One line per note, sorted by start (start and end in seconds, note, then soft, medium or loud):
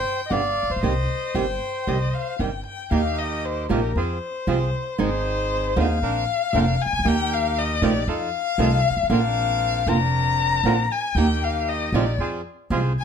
0.00 0.21 C5 medium
0.00 0.33 G5 medium
0.26 0.32 D#5 soft
0.30 0.53 G1 medium
0.30 0.40 B2 medium
0.30 0.40 D3 medium
0.30 0.40 G3 medium
0.30 0.40 B3 medium
0.30 0.41 G4 medium
0.30 0.71 D5 medium
0.30 0.82 F5 medium
0.63 0.69 A1 soft
0.70 0.76 A#1 medium
0.70 2.36 C5 medium
0.76 0.82 B1 medium
0.83 1.05 C2 medium
0.83 0.92 C3 medium
0.83 0.92 D#3 medium
0.83 0.92 G3 medium
0.83 0.93 C4 medium
0.83 0.93 G4 medium
0.83 1.36 D#5 medium
1.35 1.57 G1 medium
1.35 1.44 C3 medium
1.35 1.44 D#3 medium
1.35 1.44 G3 medium
1.35 1.44 C4 medium
1.35 1.44 G4 medium
1.35 1.89 G5 medium
1.87 2.09 C2 medium
1.87 1.96 C3 medium
1.87 1.96 D#3 medium
1.87 1.96 G3 medium
1.87 1.97 C4 medium
1.87 1.97 G4 medium
1.87 2.15 D#5 medium
2.14 2.41 F5 medium
2.39 2.61 G1 medium
2.39 2.49 C3 medium
2.39 2.49 D#3 medium
2.39 2.49 G3 medium
2.39 2.49 C4 medium
2.39 2.49 G4 medium
2.39 2.65 G5 medium
2.66 2.90 G5 medium
2.91 3.66 D#2 medium
2.91 3.00 D#3 medium
2.91 3.01 A#3 medium
2.91 3.66 A#3 medium
2.91 3.01 D#4 medium
2.91 3.66 D#4 medium
2.91 3.01 G4 medium
2.91 3.67 G4 medium
2.91 3.20 F5 medium
3.18 3.47 D#5 medium
3.45 3.71 C5 medium
3.69 3.92 A#1 medium
3.69 3.79 C3 medium
3.69 3.79 F3 medium
3.69 3.79 G#3 medium
3.69 3.92 A#3 medium
3.69 3.79 C4 medium
3.69 3.92 D#4 medium
3.69 3.79 F4 medium
3.69 3.92 G4 medium
3.69 3.99 A#4 medium
3.96 4.18 F2 medium
3.96 4.18 C4 medium
3.96 4.18 F4 medium
3.96 4.18 G#4 medium
3.96 5.00 C5 medium
4.47 4.69 C2 medium
4.47 4.57 C3 medium
4.47 4.57 F3 medium
4.47 4.57 G#3 medium
4.47 4.57 C4 medium
4.47 4.70 C4 medium
4.47 4.57 F4 medium
4.47 4.70 F4 medium
4.47 4.70 G#4 medium
4.98 5.73 G#1 medium
4.98 5.08 D#3 medium
4.98 5.08 G#3 medium
4.98 5.08 C4 medium
4.98 5.74 C4 medium
4.98 5.09 D#4 medium
4.98 5.74 D#4 medium
4.98 5.09 G#4 medium
4.98 5.74 G#4 medium
4.98 5.81 C5 medium
5.76 5.99 D#2 loud
5.76 5.86 D3 medium
5.76 5.86 A#3 medium
5.76 5.86 C4 medium
5.76 5.99 C4 medium
5.76 5.99 D#4 medium
5.76 5.86 F4 medium
5.76 5.99 G#4 medium
5.76 6.83 F5 medium
6.02 6.24 A#1 medium
6.02 6.25 C4 medium
6.02 6.25 D4 medium
6.02 6.25 A#4 medium
6.53 6.75 F1 loud
6.53 6.63 D3 medium
6.53 6.64 A#3 medium
6.53 6.76 C4 medium
6.53 6.64 C4 medium
6.53 6.76 D4 medium
6.53 6.64 F4 medium
6.53 6.76 A#4 medium
6.82 7.09 G#5 loud
6.86 6.92 C2 soft
6.93 6.99 C#2 medium
6.99 7.05 D2 medium
7.05 7.79 D#2 loud
7.05 7.14 D#3 medium
7.05 7.15 A#3 medium
7.05 7.15 D#4 medium
7.05 7.79 D#4 medium
7.05 7.79 G4 medium
7.05 7.15 G4 medium
7.05 7.79 A#4 medium
7.05 7.34 G5 loud
7.33 7.60 F5 medium
7.59 7.85 D#5 medium
7.82 8.04 A#1 loud
7.82 7.91 C3 medium
7.82 7.92 D#3 medium
7.82 7.92 A3 medium
7.82 7.92 C4 medium
7.82 8.04 D#4 medium
7.82 7.92 F4 medium
7.82 8.04 G4 medium
7.82 8.05 A#4 medium
7.82 8.10 D5 medium
8.07 8.29 F2 medium
8.07 8.30 D#4 medium
8.07 8.30 F4 medium
8.07 8.30 A4 medium
8.07 9.10 F5 medium
8.58 8.80 C2 loud
8.58 8.68 C3 medium
8.58 8.68 D#3 medium
8.58 8.68 A3 medium
8.58 8.68 C4 medium
8.58 8.81 D#4 medium
8.58 8.68 F4 medium
8.58 8.81 F4 medium
8.58 8.81 A4 medium
8.90 8.96 G1 soft
8.97 9.02 G#1 medium
9.03 9.09 A1 medium
9.10 9.83 A#1 loud
9.10 9.19 D3 medium
9.10 9.19 A#3 medium
9.10 9.84 C4 medium
9.10 9.20 C4 medium
9.10 9.84 D4 medium
9.10 9.20 F4 medium
9.10 9.84 A#4 medium
9.10 9.90 F5 loud
9.86 10.61 F1 loud
9.86 9.96 D3 medium
9.86 9.97 A#3 medium
9.86 10.61 C4 medium
9.86 9.97 C4 medium
9.86 10.61 D4 medium
9.86 9.97 F4 medium
9.86 10.61 A#4 medium
9.86 10.93 A#5 loud
10.64 10.86 A#1 medium
10.64 10.74 D3 medium
10.64 10.74 A#3 medium
10.64 10.86 C4 medium
10.64 10.74 C4 medium
10.64 10.87 D4 medium
10.64 10.75 F4 medium
10.64 10.87 A#4 medium
10.92 11.18 G#5 medium
11.15 11.89 D#2 medium
11.15 11.26 D#3 medium
11.15 11.90 A#3 medium
11.15 11.26 A#3 medium
11.15 11.90 D#4 medium
11.15 11.26 D#4 medium
11.15 11.90 G4 medium
11.15 11.26 G4 medium
11.15 11.45 G5 medium
11.43 11.70 F5 medium
11.69 11.96 D#5 medium
11.92 12.15 A#1 loud
11.92 12.03 C3 medium
11.92 12.03 F3 medium
11.92 12.03 G#3 medium
11.92 12.16 A#3 medium
11.92 12.03 C4 medium
11.92 12.16 D#4 medium
11.92 12.03 F4 medium
11.92 12.16 G4 medium
11.92 12.20 D5 medium
12.18 12.41 F2 medium
12.18 12.41 C4 medium
12.18 12.41 F4 medium
12.18 12.42 G#4 medium
12.70 12.92 C2 loud
12.70 12.80 C3 medium
12.70 12.80 F3 medium
12.70 12.80 G#3 medium
12.70 12.80 C4 medium
12.70 12.93 C4 medium
12.70 12.93 F4 medium
12.70 12.80 F4 medium
12.70 12.93 G#4 medium
12.99 13.04 G#5 medium